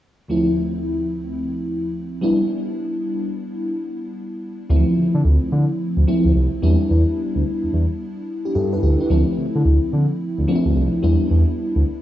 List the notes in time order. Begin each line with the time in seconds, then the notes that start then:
0.28 D2 F3 A3 C4 E4
2.21 G3 B3 D4 E4
4.69 D2 E3 A3 C4 E4
4.76 F3
4.97 D3
5.14 D3
5.24 D2
5.52 D3
5.97 D2
6.07 F3 A3 C4 E4
6.25 D2
6.35 C2
6.62 E2 G3 B3 D4 E4
6.90 E2
7.35 D2
7.63 E2
7.73 E2
8.45 D4 G4
8.55 G2 E4 A4
8.73 E4 B4
8.82 D2 D4 G4
9.00 B3 E4
9.10 D2 F3 A3 C4 E4
9.38 D3
9.55 D3
9.65 D2
9.93 D3
10.38 D2
10.48 F3 A3 C4 D4
10.55 E4
10.65 D2
10.75 C2
11.03 E2 G3 B3 D4 E4
11.30 E2
11.76 D2